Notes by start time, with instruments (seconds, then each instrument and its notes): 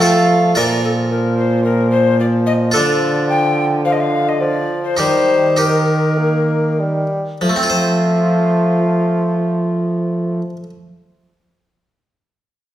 Already playing: trombone F3, harpsichord F3
0.00 harpsichord A3 F4 A4, recorder F5
0.04 bassoon A3
0.55 harpsichord A#2 F4 A#4, trombone A#2, bassoon F3, recorder D5
0.84 recorder A4
1.11 bassoon F3, recorder A#4
1.37 recorder C5
1.64 bassoon F3, recorder A#4
1.91 recorder C5
2.20 bassoon F3, recorder D5
2.46 recorder D#5
2.71 harpsichord D3 F4 A4, trombone D3, bassoon F3
2.76 recorder D5
3.29 recorder G5
3.85 bassoon F3, recorder F5
3.92 recorder D#5
4.00 recorder F5
4.28 recorder D#5
4.41 bassoon F3, recorder D5
4.84 recorder C5
4.97 harpsichord D#3 D#4 G4, trombone D#3, bassoon G3, recorder C5
5.57 bassoon D#3, harpsichord D#4 G4, recorder A#4
6.18 bassoon A#3
6.80 bassoon G3
7.41 harpsichord F3, trombone F3, bassoon A3, recorder F4
7.49 harpsichord A3
7.56 harpsichord C4
7.63 harpsichord F4
7.70 harpsichord C5